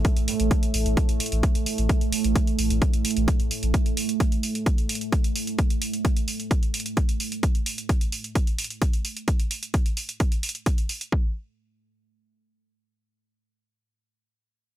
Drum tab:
HH |x-x-o-x-x-x-o-x-x-x-oxx-x-x-o-x-|x-x-o-x-x-x-o-x-x-x-oxx-x-x-o-x-|x-x-o-x-x-x-o-x-x-x-oxx-x-x-o-x-|x-x-o-x-x-x-o-x-x-x-oxx-x-x-o-x-|
BD |o-------o-------o-------o-------|o-------o-------o-------o-------|o-------o-------o-------o-------|o-------o-------o-------o-------|

HH |x-x-o-x-x-x-o-x-x-x-oxx-x-x-o-x-|x-x-o-x-x-x-o-x-x-x-oxx-x-x-o-x-|--------------------------------|--------------------------------|
BD |o-------o-------o-------o-------|o-------o-------o-------o-------|o-------------------------------|--------------------------------|